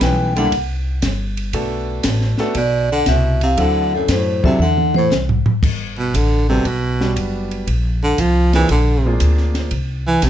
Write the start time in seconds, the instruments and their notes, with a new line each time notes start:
Already playing: grand piano G3 B3 C#4 E4 B4
0.01 upright bass B1, baritone saxophone E3, vibraphone G5, kick, snare, hi-hat pedal, ride
0.36 baritone saxophone D3, grand piano G3 A#3 D4 E4 G4, vibraphone F#5, ride
0.52 upright bass C2, kick, ride
1.02 upright bass G1, kick, snare, hi-hat pedal, ride
1.37 ride
1.53 upright bass B1, grand piano A3 B3 D4 F#4 A4, kick, ride
2.03 upright bass A1, kick, snare, hi-hat pedal, ride
2.21 snare
2.38 grand piano A3 B3 D4 F#4 A4, snare
2.55 upright bass B1, baritone saxophone B2, vibraphone D5, kick, ride
2.92 baritone saxophone D3, vibraphone F#5
3.06 upright bass C2, baritone saxophone B2, vibraphone E5, kick, snare, hi-hat pedal, ride
3.41 baritone saxophone C3, vibraphone F5, ride
3.57 upright bass D2, baritone saxophone D3, grand piano F#3 C4 D4 E4 A4, vibraphone F#5, kick, ride
3.94 baritone saxophone F#2, vibraphone A4
4.08 upright bass F#2, baritone saxophone A2, vibraphone C5, kick, snare, hi-hat pedal, ride
4.43 baritone saxophone C3, grand piano F#3 C4 D4 E4 A4, vibraphone E5, kick
4.59 upright bass E2, baritone saxophone D3, vibraphone F#5, mid tom
4.77 mid tom
4.94 baritone saxophone A2, vibraphone C5, mid tom
5.10 upright bass C2, snare, hi-hat pedal
5.29 floor tom
5.46 floor tom
5.63 upright bass G1, kick, crash
5.99 baritone saxophone B2
6.14 upright bass A1, baritone saxophone D3, kick, hi-hat pedal, ride
6.49 baritone saxophone C3, grand piano G3 B3 D4 F#4 A4
6.65 upright bass B1, baritone saxophone B2, kick, ride
7.01 grand piano G3 B3 D4 F#4 B4, snare
7.16 upright bass F#1, kick, hi-hat pedal, ride
7.51 ride
7.67 upright bass A#1, kick, ride
8.03 baritone saxophone D3
8.18 upright bass C2, baritone saxophone F3, kick, hi-hat pedal, ride
8.53 baritone saxophone E3, grand piano A#3 C4 D4 F4 G#4, snare, ride
8.69 upright bass A#1, baritone saxophone D3, kick, ride
9.05 grand piano A#3 C4 D4 F4 G#4
9.20 upright bass D2, kick, hi-hat pedal, ride
9.37 snare
9.54 snare, ride
9.71 upright bass C2, kick, ride
10.07 baritone saxophone E3
10.22 upright bass B1, baritone saxophone C3, kick, snare, hi-hat pedal, ride